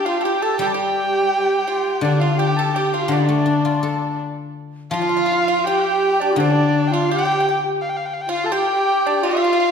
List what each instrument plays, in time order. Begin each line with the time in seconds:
Already playing: fiddle G4
0.05 pipa F4, xiao F4, erhu F5
0.21 xiao G4, pipa A4, erhu G5
0.25 pipa G4
0.42 pipa A4, xiao A4, erhu A5
0.59 guzheng G3, fiddle G4, xiao G4, pipa G4, erhu G5
0.66 erhu A5
0.72 fiddle G4, xiao G4, pipa G4, erhu G5
1.67 pipa F4
2.01 guzheng D3, xiao D4, fiddle D4, pipa D4, erhu D5
2.19 xiao F4, pipa F4, erhu F5
2.36 xiao G4, pipa G4, fiddle G4, erhu G5
2.57 pipa A4, erhu A5
2.74 fiddle G4, xiao G4, pipa G4, erhu G5
2.86 erhu G5
2.93 pipa F4, erhu F5
3.02 xiao F4
3.08 guzheng D3, xiao D4, fiddle D4, pipa D4, erhu D5
3.29 guzheng A3
3.46 guzheng D4
3.65 guzheng F4
3.83 guzheng A4
4.91 guzheng F3, fiddle F4, pipa F4, xiao F4, erhu F5
5.02 pipa F4
5.09 pipa F4
5.17 pipa F4
5.26 pipa F4
5.32 pipa F4
5.48 pipa F4
5.65 fiddle G4, xiao G4, pipa G4, erhu G5
6.20 pipa D4, erhu D5
6.36 guzheng D3, fiddle D4, xiao D4, pipa D4, erhu D5
6.87 xiao F4, erhu G5
6.92 pipa F4, erhu F5
7.10 fiddle G4, xiao G4, pipa G4, erhu G5
7.18 pipa G4
7.25 pipa G4
7.31 pipa G4
7.40 pipa G4
7.49 pipa G4
7.81 erhu F5
7.89 erhu G5
7.96 erhu F5
8.05 erhu G5
8.13 erhu F5
8.21 erhu G5
8.27 xiao F4, pipa F4, fiddle F4, erhu F5
8.44 xiao A4, erhu A5
8.51 xiao G4, pipa G4, fiddle G4, erhu G5
9.06 pipa D4, erhu D5
9.23 xiao F4, pipa F4, fiddle F4, erhu F5
9.31 pipa F4
9.37 pipa F4
9.44 pipa F4
9.53 pipa F4
9.60 pipa F4